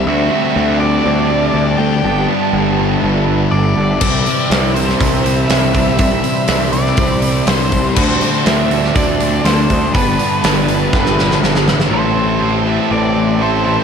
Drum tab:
CC |----------------|----------------|x---------------|----------------|
HH |----------------|----------------|--o-o-o-o-o-o-o-|o-o-o-o-o-o-o-o-|
SD |----------------|----------------|----o--o----o---|----o--o----o---|
BD |----------------|----------------|o-------o-----o-|o-------o-----o-|

CC |x---------------|----------------|----------------|
HH |--o-o-o-o-o-o-o-|o-o-o-o---------|----------------|
SD |----o--o----o---|----o---oooooooo|----------------|
BD |o-------o-----o-|o-------o-------|----------------|